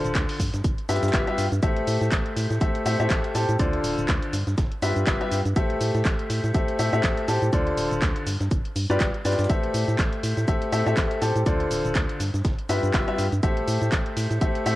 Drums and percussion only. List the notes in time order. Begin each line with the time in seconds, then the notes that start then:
0.04 closed hi-hat, cabasa
0.15 kick, snare, clap, closed hi-hat, cabasa, shaker
0.29 closed hi-hat, open hi-hat
0.40 kick, open hi-hat, cabasa, shaker
0.54 snare, closed hi-hat, cabasa
0.64 kick, closed hi-hat, cabasa, shaker
0.78 closed hi-hat
0.89 snare, open hi-hat, cabasa, shaker
0.96 snare, shaker
1.03 snare, closed hi-hat, cabasa, shaker
1.08 snare, shaker
1.13 kick, snare, clap, closed hi-hat, cabasa
1.27 closed hi-hat
1.38 open hi-hat, cabasa, shaker
1.52 closed hi-hat, cabasa
1.63 kick, closed hi-hat, cabasa, shaker
1.77 closed hi-hat
1.87 open hi-hat, cabasa, shaker
2.01 snare, closed hi-hat, cabasa
2.12 kick, snare, clap, closed hi-hat, cabasa, shaker
2.26 closed hi-hat
2.36 open hi-hat, cabasa
2.50 snare, closed hi-hat, cabasa
2.61 kick, closed hi-hat, cabasa, shaker
2.75 closed hi-hat
2.86 open hi-hat, cabasa, shaker
3.00 closed hi-hat, cabasa
3.10 kick, snare, clap, closed hi-hat, cabasa, shaker
3.24 closed hi-hat
3.35 open hi-hat, cabasa, shaker
3.49 closed hi-hat, cabasa
3.59 kick, closed hi-hat, cabasa, shaker
3.73 closed hi-hat
3.84 open hi-hat, cabasa, shaker
3.98 closed hi-hat, cabasa
4.08 kick, snare, clap, closed hi-hat, cabasa, shaker
4.22 closed hi-hat
4.33 open hi-hat, cabasa, shaker
4.47 snare, closed hi-hat, cabasa
4.58 kick, snare, closed hi-hat, cabasa, shaker
4.72 closed hi-hat
4.82 snare, open hi-hat, cabasa, shaker
4.96 closed hi-hat, cabasa
5.07 kick, snare, clap, closed hi-hat, cabasa, shaker
5.21 closed hi-hat
5.31 open hi-hat, cabasa, shaker
5.45 closed hi-hat, cabasa
5.56 kick, closed hi-hat, cabasa, shaker
5.70 closed hi-hat
5.81 open hi-hat, cabasa, shaker
5.95 snare, closed hi-hat, cabasa
6.05 kick, snare, clap, closed hi-hat, cabasa, shaker
6.19 closed hi-hat
6.30 open hi-hat, cabasa
6.44 snare, closed hi-hat, cabasa
6.54 kick, closed hi-hat, cabasa, shaker
6.68 closed hi-hat
6.79 open hi-hat, cabasa, shaker
6.93 closed hi-hat, cabasa
7.03 kick, snare, clap, closed hi-hat, cabasa, shaker
7.17 closed hi-hat
7.28 open hi-hat, cabasa, shaker
7.42 closed hi-hat, cabasa
7.53 kick, closed hi-hat, cabasa, shaker
7.67 closed hi-hat
7.77 open hi-hat, cabasa, shaker
7.91 closed hi-hat, cabasa
8.02 kick, snare, clap, closed hi-hat, cabasa, shaker
8.16 closed hi-hat
8.27 open hi-hat, cabasa, shaker
8.41 snare, closed hi-hat, cabasa
8.51 kick, closed hi-hat, cabasa, shaker
8.65 closed hi-hat
8.76 open hi-hat, cabasa, shaker
8.90 cabasa
9.00 kick, snare, clap, closed hi-hat, cabasa, shaker
9.14 closed hi-hat
9.25 snare, open hi-hat, cabasa, shaker
9.32 snare, shaker
9.39 snare, closed hi-hat, cabasa, shaker
9.44 snare, shaker
9.50 kick, closed hi-hat, cabasa, shaker
9.63 closed hi-hat
9.74 open hi-hat, cabasa, shaker
9.88 snare, closed hi-hat, cabasa
9.99 kick, snare, clap, closed hi-hat, cabasa, shaker
10.13 closed hi-hat
10.23 open hi-hat, cabasa
10.37 snare, closed hi-hat, cabasa
10.48 kick, closed hi-hat, cabasa, shaker
10.62 closed hi-hat
10.72 open hi-hat, cabasa, shaker
10.86 closed hi-hat, cabasa
10.97 kick, snare, clap, closed hi-hat, cabasa, shaker
11.11 closed hi-hat
11.22 open hi-hat, cabasa, shaker
11.36 closed hi-hat, cabasa
11.46 kick, closed hi-hat, cabasa, shaker
11.60 closed hi-hat
11.71 open hi-hat, cabasa, shaker
11.85 closed hi-hat, cabasa
11.95 kick, snare, clap, closed hi-hat, cabasa, shaker
12.09 closed hi-hat
12.20 open hi-hat, cabasa, shaker
12.34 snare, closed hi-hat, cabasa
12.45 kick, snare, closed hi-hat, cabasa, shaker
12.59 closed hi-hat
12.69 snare, open hi-hat, cabasa, shaker
12.83 closed hi-hat, cabasa
12.94 kick, snare, clap, closed hi-hat, cabasa, shaker
13.08 closed hi-hat
13.18 open hi-hat, cabasa, shaker
13.32 closed hi-hat, cabasa
13.43 kick, closed hi-hat, cabasa, shaker
13.57 closed hi-hat
13.68 open hi-hat, cabasa, shaker
13.81 snare, closed hi-hat, cabasa
13.92 kick, snare, clap, closed hi-hat, cabasa, shaker
14.06 closed hi-hat
14.17 open hi-hat, cabasa
14.31 snare, closed hi-hat, cabasa
14.41 kick, closed hi-hat, cabasa, shaker
14.55 closed hi-hat
14.66 open hi-hat, cabasa, shaker